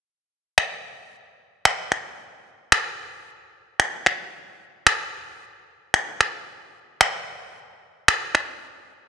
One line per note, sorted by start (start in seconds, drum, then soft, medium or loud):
0.58 finger snap loud
1.65 finger snap loud
1.92 finger snap medium
2.72 finger snap loud
3.80 finger snap loud
4.06 finger snap medium
4.87 finger snap loud
5.94 finger snap loud
6.21 finger snap medium
7.01 finger snap loud
8.08 finger snap loud
8.35 finger snap medium